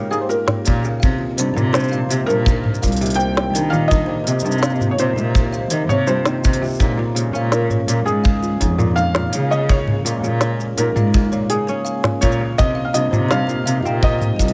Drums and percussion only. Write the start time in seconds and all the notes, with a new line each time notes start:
0.12 shaker
0.30 shaker
0.48 snare, mid tom
0.65 kick, open hi-hat, shaker
0.84 shaker
1.02 kick, shaker
1.38 open hi-hat, shaker
1.57 mid tom, shaker
1.74 snare, shaker
1.79 shaker
1.84 shaker
1.88 shaker
1.93 shaker
2.11 open hi-hat, shaker
2.29 shaker
2.46 kick, shaker
2.65 mid tom
2.74 shaker
2.83 kick, open hi-hat, shaker
2.87 open hi-hat
2.92 open hi-hat
2.96 open hi-hat
3.01 open hi-hat, shaker
3.06 open hi-hat
3.10 open hi-hat
3.14 open hi-hat
3.20 shaker
3.37 snare
3.55 open hi-hat, shaker
3.73 mid tom, shaker
3.91 kick, shaker
4.27 open hi-hat, shaker
4.40 shaker
4.45 shaker
4.52 shaker
4.58 shaker
4.63 snare, shaker
4.70 shaker
4.75 shaker
4.81 mid tom, shaker
4.99 open hi-hat, shaker
5.18 shaker
5.35 kick, shaker
5.53 shaker
5.70 open hi-hat, shaker
5.89 mid tom, shaker
6.07 shaker
6.25 snare, shaker
6.44 kick, shaker
6.53 open hi-hat
6.63 shaker
6.66 shaker
6.68 shaker
6.70 shaker
6.72 shaker
6.75 shaker
6.76 shaker
6.79 kick, shaker
6.81 shaker
7.16 open hi-hat, shaker
7.35 shaker
7.52 snare, shaker
7.70 mid tom, shaker
7.88 open hi-hat, shaker
8.07 shaker
8.25 kick, shaker
8.43 shaker
8.61 kick, open hi-hat, shaker
8.79 mid tom, shaker
8.97 shaker
9.15 snare
9.33 open hi-hat, shaker
9.52 shaker
9.69 kick, shaker
9.87 mid tom
10.06 open hi-hat, shaker
10.24 shaker
10.41 snare, shaker
10.60 shaker
10.78 open hi-hat, shaker
10.96 mid tom, shaker
11.14 kick, shaker
11.32 shaker
11.50 open hi-hat
11.68 shaker
11.86 shaker
12.04 snare, mid tom
12.22 kick, open hi-hat, shaker
12.31 shaker
12.59 kick, shaker
12.94 open hi-hat, shaker
13.13 mid tom, shaker
13.31 snare, shaker
13.49 shaker
13.67 open hi-hat, shaker
13.86 shaker
14.03 kick
14.21 mid tom, shaker
14.39 kick, open hi-hat, shaker
14.48 open hi-hat